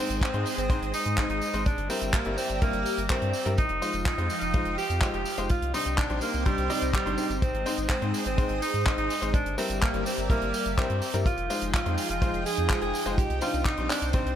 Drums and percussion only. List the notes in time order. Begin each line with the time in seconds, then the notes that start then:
0.10 closed hi-hat, tambourine
0.21 kick, clap, closed hi-hat
0.34 closed hi-hat
0.46 open hi-hat, tambourine
0.58 closed hi-hat, tambourine
0.70 kick, closed hi-hat, tambourine
0.83 closed hi-hat
0.94 open hi-hat, tambourine
1.06 closed hi-hat, tambourine
1.18 kick, clap, closed hi-hat, tambourine
1.30 closed hi-hat
1.42 open hi-hat, tambourine
1.53 closed hi-hat, tambourine
1.66 kick, closed hi-hat, tambourine
1.78 closed hi-hat
1.90 open hi-hat, tambourine
2.02 closed hi-hat, tambourine
2.13 kick, clap, closed hi-hat
2.25 closed hi-hat
2.38 open hi-hat, tambourine
2.49 closed hi-hat, tambourine
2.62 kick, closed hi-hat, tambourine
2.73 closed hi-hat
2.86 open hi-hat, tambourine
2.98 closed hi-hat, tambourine
3.10 kick, clap, closed hi-hat, tambourine
3.22 closed hi-hat
3.33 open hi-hat, tambourine
3.46 closed hi-hat, tambourine
3.58 kick, closed hi-hat, tambourine
3.69 closed hi-hat
3.82 open hi-hat, tambourine
3.93 closed hi-hat, tambourine
4.06 kick, clap, closed hi-hat
4.18 closed hi-hat
4.30 open hi-hat, tambourine
4.41 closed hi-hat, tambourine
4.54 kick, closed hi-hat, tambourine
4.65 closed hi-hat
4.78 open hi-hat, tambourine
4.90 closed hi-hat, tambourine
5.01 kick, clap, closed hi-hat, tambourine
5.14 closed hi-hat
5.25 open hi-hat, tambourine
5.38 closed hi-hat, tambourine
5.49 kick, closed hi-hat, tambourine
5.62 closed hi-hat
5.74 open hi-hat, tambourine
5.86 closed hi-hat, tambourine
5.98 kick, clap, closed hi-hat, tambourine
6.10 closed hi-hat
6.21 open hi-hat, tambourine
6.34 closed hi-hat, tambourine
6.45 kick, closed hi-hat, tambourine
6.58 closed hi-hat
6.70 open hi-hat, tambourine
6.82 closed hi-hat, tambourine
6.94 kick, clap, closed hi-hat
7.07 closed hi-hat
7.18 open hi-hat, tambourine
7.30 closed hi-hat, tambourine
7.42 kick, closed hi-hat, tambourine
7.55 closed hi-hat
7.66 open hi-hat, tambourine
7.78 closed hi-hat, tambourine
7.90 kick, clap, closed hi-hat, tambourine
8.02 closed hi-hat
8.14 open hi-hat, tambourine
8.26 closed hi-hat, tambourine
8.38 kick, closed hi-hat, tambourine
8.49 closed hi-hat
8.62 open hi-hat, tambourine
8.74 closed hi-hat, tambourine
8.86 kick, clap, closed hi-hat, tambourine
8.98 closed hi-hat
9.10 open hi-hat, tambourine
9.22 closed hi-hat, tambourine
9.34 kick, closed hi-hat, tambourine
9.46 closed hi-hat
9.58 open hi-hat, tambourine
9.70 closed hi-hat, tambourine
9.82 kick, clap, closed hi-hat
9.94 closed hi-hat
10.06 open hi-hat, tambourine
10.18 closed hi-hat, tambourine
10.30 kick, closed hi-hat, tambourine
10.42 closed hi-hat
10.54 open hi-hat, tambourine
10.66 closed hi-hat, tambourine
10.78 kick, clap, closed hi-hat, tambourine
10.90 closed hi-hat
11.02 open hi-hat, tambourine
11.14 closed hi-hat, tambourine
11.26 kick, closed hi-hat, tambourine
11.38 closed hi-hat
11.50 open hi-hat, tambourine
11.61 closed hi-hat, tambourine
11.74 kick, clap, closed hi-hat
11.86 closed hi-hat
11.98 open hi-hat, tambourine
12.09 closed hi-hat, tambourine
12.22 kick, closed hi-hat, tambourine
12.34 closed hi-hat
12.46 open hi-hat, tambourine
12.57 closed hi-hat, tambourine
12.69 kick, clap, closed hi-hat, tambourine
12.82 closed hi-hat
12.94 open hi-hat, tambourine
13.06 closed hi-hat, tambourine
13.18 kick, closed hi-hat, tambourine
13.30 closed hi-hat
13.41 open hi-hat, tambourine
13.54 closed hi-hat, tambourine
13.65 kick, clap, closed hi-hat, tambourine
13.78 closed hi-hat
13.90 clap, open hi-hat, tambourine
14.02 closed hi-hat, tambourine
14.13 kick, closed hi-hat, tambourine
14.27 closed hi-hat